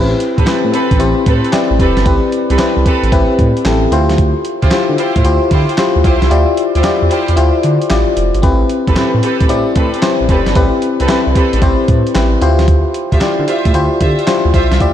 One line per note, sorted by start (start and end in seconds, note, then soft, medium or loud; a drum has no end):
0.00 0.15 A1 loud
0.00 0.29 C4 medium
0.00 0.29 E4 medium
0.00 0.29 G4 medium
0.00 0.29 B4 loud
0.00 0.10 E5 medium
0.20 closed hi-hat medium
0.38 0.45 A1 medium
0.38 0.52 C4 medium
0.38 0.53 G4 medium
0.38 0.53 A4 medium
0.38 0.53 B4 medium
0.38 kick medium
0.38 closed hi-hat medium
0.46 0.54 A2 medium
0.46 0.82 C4 medium
0.46 0.82 E4 medium
0.46 0.82 G4 medium
0.46 0.82 B4 medium
0.46 snare loud
0.46 clap medium
0.46 closed hi-hat medium
0.64 0.71 A2 medium
0.73 0.94 C4 medium
0.73 0.94 G4 medium
0.73 0.94 A4 medium
0.73 0.94 B4 medium
0.73 closed hi-hat medium
0.91 0.98 A1 loud
0.91 kick medium
0.91 closed hi-hat medium
0.99 1.14 A1 loud
0.99 1.35 C4 medium
0.99 1.35 E4 medium
0.99 1.35 G4 medium
0.99 1.35 C5 medium
0.99 closed hi-hat medium
1.26 1.41 A2 medium
1.26 1.47 C4 medium
1.26 1.47 G4 medium
1.26 1.47 A4 medium
1.26 1.47 B4 medium
1.26 kick medium
1.26 closed hi-hat medium
1.45 closed hi-hat soft
1.52 1.88 C4 medium
1.52 1.88 E4 medium
1.52 1.88 G4 medium
1.52 1.88 D5 medium
1.52 snare loud
1.52 clap loud
1.52 closed hi-hat medium
1.71 1.78 A1 medium
1.79 1.93 F1 medium
1.79 2.00 C4 medium
1.79 2.00 G4 medium
1.79 2.00 A4 medium
1.79 2.00 B4 medium
1.79 kick medium
1.79 closed hi-hat medium
1.97 2.04 G1 loud
1.97 snare medium
1.97 closed hi-hat medium
2.06 2.20 A1 loud
2.06 2.41 C4 medium
2.06 2.41 E4 medium
2.06 2.42 G4 medium
2.06 2.42 B4 loud
2.06 kick loud
2.06 closed hi-hat medium
2.32 closed hi-hat medium
2.50 2.57 C2 loud
2.50 2.65 C4 medium
2.50 2.65 G4 medium
2.50 2.65 A4 medium
2.50 2.65 B4 medium
2.50 closed hi-hat soft
2.59 2.66 C2 soft
2.59 2.94 C4 medium
2.59 2.95 E4 medium
2.59 2.95 G4 medium
2.59 2.95 B4 loud
2.59 snare loud
2.59 clap medium
2.59 closed hi-hat medium
2.77 2.84 C2 medium
2.85 3.06 C4 medium
2.85 3.06 G4 medium
2.85 3.06 A4 medium
2.85 3.07 B4 medium
2.85 kick loud
2.85 closed hi-hat medium
3.03 3.10 A1 medium
3.03 closed hi-hat medium
3.12 3.26 A1 loud
3.12 3.47 C4 medium
3.12 3.48 E4 medium
3.12 3.48 G4 medium
3.12 3.48 B4 loud
3.12 kick loud
3.12 closed hi-hat medium
3.39 3.53 A2 medium
3.39 kick medium
3.39 closed hi-hat medium
3.57 closed hi-hat soft
3.65 3.86 A1 medium
3.65 3.92 C4 medium
3.65 3.91 E4 medium
3.65 3.91 G4 medium
3.65 3.92 A4 medium
3.65 snare loud
3.65 clap loud
3.65 closed hi-hat medium
3.91 4.34 D2 loud
3.91 4.59 E4 medium
3.91 4.59 F4 medium
3.91 4.59 G4 medium
3.91 4.60 C5 loud
3.91 closed hi-hat medium
4.10 snare medium
4.10 closed hi-hat medium
4.18 kick loud
4.18 closed hi-hat medium
4.45 closed hi-hat medium
4.62 4.70 D2 medium
4.62 4.77 E4 medium
4.62 4.77 F4 medium
4.62 4.77 G4 medium
4.62 4.78 C5 medium
4.62 kick medium
4.62 closed hi-hat soft
4.71 4.79 D3 medium
4.71 5.07 E4 medium
4.71 5.07 F4 medium
4.71 5.07 G4 medium
4.71 5.07 C5 medium
4.71 snare loud
4.71 clap medium
4.71 closed hi-hat medium
4.89 4.96 D3 medium
4.98 5.19 E4 medium
4.98 5.19 F4 medium
4.98 5.19 G4 medium
4.98 5.19 C5 medium
4.98 closed hi-hat medium
5.16 5.23 A2 medium
5.16 kick medium
5.16 closed hi-hat medium
5.25 5.39 D2 loud
5.25 5.60 E4 medium
5.25 5.60 F4 medium
5.25 5.60 G4 medium
5.25 5.60 C5 medium
5.25 closed hi-hat medium
5.51 5.65 D3 medium
5.51 5.72 E4 medium
5.51 5.72 F4 medium
5.51 5.72 G4 medium
5.51 5.72 C5 medium
5.51 kick medium
5.51 closed hi-hat medium
5.69 closed hi-hat soft
5.78 6.13 E4 medium
5.78 6.13 F4 medium
5.78 6.13 G4 medium
5.78 6.14 C5 medium
5.78 snare loud
5.78 clap loud
5.78 closed hi-hat medium
5.96 6.03 D2 medium
6.04 6.18 B1 medium
6.04 6.25 E4 medium
6.04 6.25 F4 medium
6.04 6.25 G4 medium
6.04 6.25 C5 medium
6.04 kick medium
6.04 closed hi-hat medium
6.22 6.29 C2 loud
6.22 snare medium
6.22 closed hi-hat soft
6.30 6.45 D2 loud
6.30 6.66 E4 medium
6.30 6.66 F4 medium
6.30 6.66 G4 medium
6.30 6.67 D5 medium
6.30 closed hi-hat medium
6.57 closed hi-hat medium
6.75 6.82 D2 medium
6.75 6.90 E4 medium
6.75 6.90 F4 medium
6.75 6.90 G4 medium
6.75 6.90 C5 medium
6.75 closed hi-hat soft
6.84 6.91 E2 medium
6.84 7.19 E4 medium
6.84 7.19 F4 medium
6.84 7.19 G4 medium
6.84 7.20 D5 loud
6.84 snare loud
6.84 clap medium
6.84 closed hi-hat medium
7.02 7.09 E2 medium
7.10 7.31 E4 medium
7.10 7.31 F4 medium
7.10 7.31 G4 medium
7.10 7.31 C5 medium
7.10 closed hi-hat medium
7.28 7.36 E2 medium
7.28 closed hi-hat medium
7.36 7.51 D2 loud
7.36 7.72 E4 loud
7.36 7.72 F4 medium
7.36 7.72 G4 medium
7.36 7.73 C5 medium
7.36 closed hi-hat medium
7.63 7.78 D3 medium
7.63 closed hi-hat medium
7.82 closed hi-hat soft
7.90 8.04 A1 loud
7.90 8.25 E4 medium
7.90 8.26 F4 medium
7.90 8.26 G4 medium
7.90 8.26 D5 medium
7.90 snare loud
7.90 clap loud
7.90 closed hi-hat medium
8.17 8.31 F1 medium
8.17 closed hi-hat medium
8.35 8.41 G1 medium
8.35 closed hi-hat soft
8.42 8.64 A1 loud
8.42 8.78 C4 medium
8.42 8.78 E4 medium
8.42 8.79 G4 medium
8.42 8.79 B4 medium
8.42 kick loud
8.42 closed hi-hat medium
8.70 closed hi-hat medium
8.87 8.95 A1 medium
8.87 9.02 C4 medium
8.87 9.02 G4 medium
8.87 9.02 A4 medium
8.87 9.02 B4 medium
8.87 kick medium
8.87 closed hi-hat soft
8.96 9.04 A2 medium
8.96 9.31 C4 medium
8.96 9.32 E4 medium
8.96 9.32 G4 medium
8.96 9.32 B4 medium
8.96 snare loud
8.96 clap medium
8.96 closed hi-hat medium
9.14 9.21 A2 medium
9.23 9.43 C4 medium
9.23 9.44 G4 medium
9.23 9.44 A4 medium
9.23 9.44 B4 medium
9.23 closed hi-hat medium
9.40 9.48 A1 medium
9.40 kick medium
9.40 closed hi-hat medium
9.49 9.64 A1 loud
9.49 9.85 C4 medium
9.49 9.85 E4 medium
9.49 9.85 G4 medium
9.49 9.85 D5 medium
9.49 closed hi-hat medium
9.76 9.90 A2 medium
9.76 9.96 C4 medium
9.76 9.97 G4 medium
9.76 9.97 A4 medium
9.76 9.97 B4 medium
9.76 kick medium
9.76 closed hi-hat medium
9.94 closed hi-hat soft
10.02 10.38 C4 medium
10.02 10.38 E4 medium
10.02 10.38 G4 medium
10.02 10.38 C5 medium
10.02 snare loud
10.02 clap loud
10.02 closed hi-hat medium
10.21 10.27 A1 loud
10.29 10.43 F1 medium
10.29 10.50 C4 medium
10.29 10.50 G4 medium
10.29 10.50 A4 medium
10.29 10.50 B4 medium
10.29 kick medium
10.29 closed hi-hat medium
10.46 10.54 G1 medium
10.46 snare medium
10.46 closed hi-hat soft
10.55 10.70 A1 loud
10.55 10.91 C4 medium
10.55 10.91 E4 medium
10.55 10.91 G4 medium
10.55 10.91 B4 loud
10.55 kick loud
10.55 closed hi-hat medium
10.82 closed hi-hat medium
11.00 11.07 C2 medium
11.00 11.14 C4 medium
11.00 11.15 G4 medium
11.00 11.15 A4 medium
11.00 11.15 B4 medium
11.00 closed hi-hat medium
11.08 11.16 C2 medium
11.08 11.44 C4 medium
11.08 11.44 E4 medium
11.08 11.44 G4 medium
11.08 11.44 B4 loud
11.08 snare loud
11.08 clap medium
11.08 closed hi-hat medium
11.27 11.34 C2 medium
11.35 11.56 C4 medium
11.35 11.56 G4 medium
11.35 11.56 A4 medium
11.35 11.56 B4 medium
11.35 kick loud
11.35 closed hi-hat medium
11.53 11.60 A1 medium
11.53 closed hi-hat medium
11.62 11.76 A1 loud
11.62 11.97 C4 medium
11.62 11.97 E4 medium
11.62 11.97 G4 medium
11.62 11.98 C5 loud
11.62 kick loud
11.62 closed hi-hat medium
11.88 12.03 A2 medium
11.88 kick medium
11.88 closed hi-hat medium
12.07 closed hi-hat soft
12.15 12.36 A1 medium
12.15 12.41 C4 medium
12.15 12.40 E4 medium
12.15 12.41 G4 medium
12.15 12.42 B4 medium
12.15 snare loud
12.15 clap loud
12.15 closed hi-hat medium
12.41 12.84 D2 loud
12.41 13.09 E4 loud
12.41 13.09 F4 medium
12.41 13.09 G4 medium
12.41 13.09 C5 loud
12.41 closed hi-hat medium
12.59 snare medium
12.59 closed hi-hat medium
12.68 kick loud
12.68 closed hi-hat medium
12.94 closed hi-hat medium
13.12 13.19 D2 medium
13.12 13.27 F4 medium
13.12 13.27 G4 medium
13.12 13.27 C5 medium
13.12 13.27 E5 medium
13.12 kick medium
13.12 closed hi-hat soft
13.21 13.28 D3 medium
13.21 13.56 E4 medium
13.21 13.56 F4 medium
13.21 13.57 G4 medium
13.21 13.57 D5 medium
13.21 snare loud
13.21 clap medium
13.21 closed hi-hat medium
13.39 13.46 D3 loud
13.47 13.68 F4 medium
13.47 13.68 G4 medium
13.47 13.68 C5 medium
13.47 13.68 E5 medium
13.47 closed hi-hat medium
13.65 13.72 A2 medium
13.65 kick medium
13.65 closed hi-hat medium
13.74 13.89 D2 loud
13.74 14.09 E4 medium
13.74 14.10 F4 medium
13.74 14.10 G4 medium
13.74 14.10 C5 loud
13.74 closed hi-hat medium
14.00 14.15 D3 medium
14.00 14.21 F4 medium
14.00 14.21 G4 medium
14.00 14.21 C5 medium
14.00 14.22 E5 medium
14.00 kick medium
14.00 closed hi-hat medium
14.19 closed hi-hat soft
14.27 14.62 E4 medium
14.27 14.63 F4 medium
14.27 14.63 G4 medium
14.27 14.63 C5 loud
14.27 snare loud
14.27 clap loud
14.27 closed hi-hat medium
14.45 14.52 D2 medium
14.54 14.68 B1 medium
14.54 14.74 F4 medium
14.54 14.75 G4 medium
14.54 14.75 C5 medium
14.54 14.75 E5 medium
14.54 kick medium
14.54 closed hi-hat medium
14.71 14.79 C2 medium
14.71 snare medium
14.71 closed hi-hat soft
14.80 14.93 D2 loud
14.80 14.93 E4 medium
14.80 14.93 F4 medium
14.80 14.93 G4 medium
14.80 14.93 D5 loud
14.80 kick loud
14.80 closed hi-hat medium